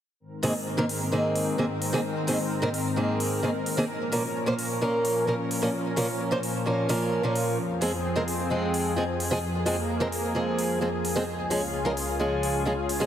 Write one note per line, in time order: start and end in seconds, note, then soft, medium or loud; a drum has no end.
0.20 3.86 G#2 medium
0.20 3.86 D#3 medium
0.20 3.86 C4 medium
0.20 7.55 A#4 medium
0.43 0.52 G#2 medium
0.43 0.52 D#3 medium
0.43 0.52 A#3 medium
0.43 0.52 C4 medium
0.43 0.53 G#4 medium
0.43 open hi-hat medium
0.77 0.83 G#2 medium
0.77 0.83 D#3 medium
0.77 0.83 A#3 medium
0.77 0.84 C4 medium
0.77 0.84 A#4 loud
0.89 open hi-hat medium
1.12 1.55 G#2 medium
1.12 1.56 D#3 medium
1.12 1.56 A#3 medium
1.12 1.56 C4 medium
1.12 1.56 G#4 medium
1.36 open hi-hat loud
1.58 1.64 G#2 medium
1.58 1.64 D#3 medium
1.58 1.64 A#3 medium
1.58 1.64 C4 medium
1.58 1.65 G#4 medium
1.82 open hi-hat medium
1.93 1.99 G#2 medium
1.93 1.99 D#3 medium
1.93 1.99 A#3 medium
1.93 1.99 C4 medium
1.93 1.99 G#4 loud
2.27 2.37 G#2 medium
2.27 2.37 D#3 medium
2.27 2.37 A#3 medium
2.27 2.37 C4 medium
2.27 2.37 G#4 medium
2.27 open hi-hat loud
2.62 2.68 G#2 medium
2.62 2.68 D#3 medium
2.62 2.68 A#3 medium
2.62 2.68 C4 medium
2.62 2.68 A#4 loud
2.74 open hi-hat medium
2.96 3.40 G#2 medium
2.96 3.40 D#3 medium
2.96 3.40 A#3 medium
2.96 3.41 C4 medium
2.96 3.41 G#4 medium
3.20 open hi-hat loud
3.43 3.49 G#2 medium
3.43 3.49 D#3 medium
3.43 3.49 A#3 medium
3.43 3.49 C4 medium
3.43 3.49 G#4 medium
3.66 open hi-hat medium
3.77 3.83 D#3 loud
3.77 3.83 A#3 medium
3.77 3.84 C4 medium
3.77 3.84 G#4 loud
3.89 7.55 A#2 medium
3.89 11.24 F3 medium
3.89 7.55 C#4 medium
4.12 4.21 A#2 medium
4.12 4.21 F3 medium
4.12 4.22 A#3 medium
4.12 4.22 C#4 medium
4.12 4.22 A#4 medium
4.12 open hi-hat loud
4.46 4.52 A#2 medium
4.46 4.53 F3 medium
4.46 4.53 A#3 medium
4.46 4.53 C#4 medium
4.46 4.53 C5 loud
4.59 open hi-hat medium
4.81 5.25 A#2 medium
4.81 5.25 F3 medium
4.81 5.25 A#3 medium
4.81 5.25 C#4 medium
4.81 5.25 A#4 medium
5.05 open hi-hat loud
5.27 5.33 A#2 medium
5.27 5.33 F3 medium
5.27 5.34 A#3 medium
5.27 5.34 C#4 medium
5.27 5.34 A#4 medium
5.51 open hi-hat medium
5.62 5.68 A#2 medium
5.62 5.68 F3 medium
5.62 5.68 A#3 medium
5.62 5.68 C#4 medium
5.62 5.68 A#4 loud
5.96 6.06 A#2 medium
5.96 6.06 F3 medium
5.96 6.06 A#3 medium
5.96 6.06 C#4 medium
5.96 6.06 A#4 medium
5.96 open hi-hat loud
6.31 6.37 A#2 medium
6.31 6.37 F3 medium
6.31 6.37 A#3 medium
6.31 6.37 C#4 medium
6.31 6.38 C5 loud
6.43 open hi-hat medium
6.66 6.87 A#2 medium
6.66 6.87 F3 medium
6.66 6.87 A#3 medium
6.66 6.87 C#4 medium
6.66 6.87 A#4 medium
6.89 7.21 A#2 medium
6.89 7.21 F3 medium
6.89 7.21 A#3 medium
6.89 7.21 C#4 medium
6.89 7.22 A#4 loud
6.89 open hi-hat loud
7.23 7.57 A#2 medium
7.23 7.57 F3 medium
7.23 7.57 A#3 medium
7.23 7.57 C#4 medium
7.23 7.58 A#4 medium
7.36 open hi-hat medium
7.58 11.24 F2 medium
7.58 9.41 C4 medium
7.58 13.06 G#4 medium
7.81 7.90 F3 medium
7.81 7.91 G#3 medium
7.81 7.91 C4 medium
7.81 7.91 G#4 medium
7.81 open hi-hat loud
8.16 8.22 F3 medium
8.16 8.22 G#3 medium
8.16 8.22 C4 medium
8.16 8.22 A#4 loud
8.28 open hi-hat medium
8.50 8.94 F3 medium
8.50 8.94 G#3 medium
8.50 8.94 C4 medium
8.50 8.95 G#4 medium
8.74 open hi-hat loud
8.96 9.02 F3 medium
8.96 9.03 G#3 medium
8.96 9.03 C4 medium
8.96 9.03 G#4 medium
9.20 open hi-hat medium
9.31 9.37 F3 loud
9.31 9.37 G#3 medium
9.31 9.37 C4 medium
9.31 9.38 G#4 loud
9.43 11.26 A#3 medium
9.66 9.75 F3 medium
9.66 9.75 G#3 medium
9.66 9.75 C4 medium
9.66 9.76 G#4 medium
9.66 open hi-hat medium
10.00 10.06 F3 medium
10.00 10.06 G#3 medium
10.00 10.07 C4 medium
10.00 10.07 A#4 loud
10.12 open hi-hat medium
10.35 10.79 F3 medium
10.35 10.79 G#3 medium
10.35 10.79 C4 medium
10.35 10.79 G#4 medium
10.59 open hi-hat loud
10.81 10.87 F3 medium
10.81 10.87 G#3 medium
10.81 10.87 C4 medium
10.81 10.88 G#4 medium
11.05 open hi-hat medium
11.16 11.22 F3 loud
11.16 11.22 G#3 medium
11.16 11.22 C4 medium
11.16 11.22 G#4 loud
11.28 13.06 C#2 medium
11.28 13.06 C#3 medium
11.28 13.06 F4 medium
11.50 11.60 F3 medium
11.50 11.60 G#3 medium
11.50 11.60 C#4 medium
11.50 11.60 G#4 medium
11.50 open hi-hat medium
11.85 11.91 F3 medium
11.85 11.91 G#3 medium
11.85 11.91 C#4 medium
11.85 11.91 A#4 loud
11.97 open hi-hat medium
12.19 12.63 F3 medium
12.19 12.63 G#3 medium
12.19 12.64 C#4 medium
12.19 12.64 G#4 medium
12.43 open hi-hat loud
12.65 12.72 F3 medium
12.65 12.72 G#3 medium
12.65 12.72 C#4 medium
12.65 12.72 G#4 medium
12.89 open hi-hat medium
13.00 13.06 F3 loud
13.00 13.06 G#3 medium
13.00 13.06 C#4 medium
13.00 13.06 G#4 loud